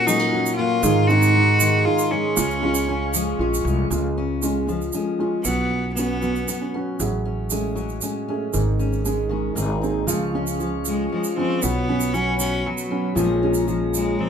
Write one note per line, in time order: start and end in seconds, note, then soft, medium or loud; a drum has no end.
0.00 0.28 A#2 loud
0.00 0.83 A#2 medium
0.00 0.89 A#3 medium
0.00 0.33 C#4 medium
0.00 0.88 C#4 medium
0.00 0.31 F#4 medium
0.00 0.82 A#4 medium
0.00 0.82 F#5 medium
0.00 0.81 C#6 medium
0.06 0.81 F#3 medium
0.06 0.20 G#3 medium
0.06 0.55 D#4 loud
0.06 shaker medium
0.20 0.58 A#3 medium
0.33 0.82 C#4 medium
0.33 0.84 F#4 medium
0.46 shaker medium
0.56 0.81 A#3 medium
0.56 1.08 F4 loud
0.83 1.81 G#2 loud
0.83 2.34 G#2 medium
0.83 2.37 D#3 loud
0.83 1.10 D#4 medium
0.83 3.87 G#4 medium
0.83 1.09 G#4 medium
0.83 2.36 D#5 medium
0.83 2.36 C6 medium
0.83 shaker medium
1.07 2.35 G#3 medium
1.07 1.35 C4 medium
1.07 1.36 D#4 medium
1.07 1.86 F#4 loud
1.07 1.83 G#4 medium
1.07 shaker soft
1.22 shaker medium
1.37 1.86 D#4 medium
1.60 2.38 D#3 medium
1.60 2.13 G#3 medium
1.60 shaker loud
1.85 2.35 D#4 medium
1.85 2.13 F4 medium
1.85 2.37 G#4 medium
1.99 shaker medium
2.12 3.14 G#3 medium
2.12 3.39 C#4 medium
2.36 3.35 C#2 loud
2.36 3.14 C#3 medium
2.36 2.61 G#3 medium
2.36 2.88 C#4 medium
2.36 2.62 F4 medium
2.36 3.89 F5 medium
2.36 3.89 C#6 medium
2.36 shaker loud
2.51 shaker soft
2.62 3.89 G#3 medium
2.62 2.87 C#4 medium
2.62 5.45 F4 medium
2.62 3.38 F4 medium
2.75 shaker medium
2.88 3.96 C#4 medium
2.88 3.40 C#4 medium
3.14 3.88 F3 medium
3.14 3.66 G#3 medium
3.14 shaker loud
3.39 3.62 A#1 medium
3.39 3.88 C#4 medium
3.39 3.90 F4 medium
3.54 shaker medium
3.65 3.88 C2 medium
3.65 4.43 G#3 medium
3.65 shaker soft
3.90 4.89 C#2 medium
3.90 4.68 C#3 medium
3.90 4.41 G#3 medium
3.90 4.42 F4 medium
3.90 shaker medium
4.18 4.69 C#4 medium
4.42 4.66 G#3 medium
4.42 4.94 G#3 soft
4.42 4.92 C#4 medium
4.42 5.19 F4 medium
4.42 shaker medium
4.67 5.42 F3 medium
4.67 5.17 G#3 soft
4.67 5.20 C#4 soft
4.67 shaker soft
4.81 shaker soft
4.93 5.45 G#3 medium
4.93 5.18 C#4 medium
4.93 shaker medium
5.19 5.50 G#3 medium
5.19 5.50 C#4 medium
5.19 5.48 C#4 medium
5.19 5.45 F4 medium
5.43 6.43 B1 medium
5.43 6.96 B2 medium
5.43 6.98 F#3 medium
5.43 5.91 B3 loud
5.43 5.96 F#4 medium
5.43 shaker medium
5.70 6.23 C#4 medium
5.94 6.68 B3 loud
5.94 6.48 B3 medium
5.94 shaker medium
5.98 6.21 B3 medium
5.98 6.49 C#4 medium
5.98 6.74 F#4 medium
6.22 6.96 F#3 medium
6.22 6.47 B3 medium
6.22 6.74 C#4 soft
6.22 shaker soft
6.36 shaker soft
6.48 6.60 B3 medium
6.48 6.97 B3 medium
6.48 shaker medium
6.61 6.74 C#4 soft
6.74 7.04 B3 medium
6.74 7.25 C#4 medium
6.74 7.05 C#4 medium
6.74 7.00 F#4 medium
7.00 7.98 A1 loud
7.00 8.51 A2 medium
7.00 8.54 F#3 medium
7.00 7.51 G#4 medium
7.00 shaker medium
7.25 7.75 C#4 medium
7.50 8.02 G#3 medium
7.50 7.76 A3 medium
7.50 8.02 C#4 medium
7.50 8.28 G#4 medium
7.50 shaker medium
7.75 8.50 F#3 medium
7.75 8.27 C#4 medium
7.75 shaker soft
7.89 shaker soft
8.01 9.04 G#3 medium
8.01 8.28 C#4 medium
8.01 shaker medium
8.28 8.59 A3 medium
8.28 8.51 C#4 medium
8.28 8.60 C#4 medium
8.28 8.53 G#4 medium
8.53 9.53 G#1 medium
8.53 9.53 G#2 medium
8.53 9.55 D#3 medium
8.53 9.05 G#4 medium
8.53 shaker medium
8.79 9.30 C#4 medium
8.79 shaker soft
8.93 shaker soft
9.05 9.56 G#3 medium
9.05 9.30 G#3 medium
9.05 9.62 C#4 medium
9.05 9.62 G#4 medium
9.05 shaker medium
9.29 9.54 D#3 medium
9.29 9.62 G#3 medium
9.29 9.53 C#4 medium
9.55 10.05 G#1 medium
9.55 10.04 G#2 medium
9.55 10.07 D#3 medium
9.55 10.13 D#3 medium
9.55 10.05 C4 soft
9.55 9.80 D#4 medium
9.55 10.05 G#4 medium
9.55 shaker medium
9.82 10.13 A#3 medium
9.82 10.13 C4 medium
9.82 10.04 D#4 medium
9.82 10.14 G#4 medium
9.82 shaker soft
10.07 11.06 C#2 medium
10.07 10.59 C#3 medium
10.07 10.32 F3 medium
10.07 10.85 G#3 medium
10.07 11.61 G#4 medium
10.07 11.61 F5 medium
10.07 11.61 C#6 medium
10.07 shaker loud
10.33 10.58 F3 medium
10.33 11.36 G#3 medium
10.33 11.37 C#4 medium
10.33 11.39 C#4 medium
10.47 shaker medium
10.59 11.35 F3 medium
10.59 11.11 F3 medium
10.59 shaker soft
10.85 11.10 G#3 medium
10.85 11.63 G#3 soft
10.85 shaker medium
11.12 11.60 F3 medium
11.12 11.35 G#3 medium
11.24 shaker medium
11.37 11.62 F3 medium
11.37 11.68 G#3 medium
11.37 11.65 C4 medium
11.37 11.68 C#4 medium
11.37 11.65 C#4 medium
11.61 12.62 B1 medium
11.61 13.14 B2 medium
11.61 11.87 F#3 medium
11.61 12.15 B3 loud
11.61 12.40 B3 medium
11.61 13.15 F#4 medium
11.61 14.29 C#5 medium
11.61 13.15 B5 medium
11.61 shaker medium
11.88 12.13 F#3 medium
11.88 12.90 B3 medium
11.88 12.90 C#4 medium
12.00 shaker medium
12.13 12.65 F#3 medium
12.13 12.89 F#3 medium
12.13 12.39 C#4 loud
12.13 shaker soft
12.39 13.14 B3 medium
12.39 12.68 C#4 medium
12.39 shaker medium
12.66 13.04 F#3 medium
12.66 13.14 F#3 medium
12.78 shaker medium
12.91 13.17 F#3 medium
12.91 13.22 B3 medium
12.91 13.17 C#4 medium
12.91 13.22 C#4 medium
13.15 14.15 A#1 medium
13.15 14.29 A#2 medium
13.15 13.66 F3 medium
13.15 13.41 F3 medium
13.15 13.94 G#3 medium
13.15 13.42 C#4 medium
13.15 14.29 G#4 medium
13.15 14.29 A#5 medium
13.15 shaker medium
13.43 13.67 F3 medium
13.43 14.29 G#3 medium
13.43 14.29 C#4 medium
13.54 shaker medium
13.68 14.18 F3 medium
13.68 14.29 F3 medium
13.68 shaker soft
13.94 14.29 G#3 medium
13.94 14.22 G#3 medium
13.94 shaker medium
14.19 14.29 F3 medium
14.19 14.29 C4 medium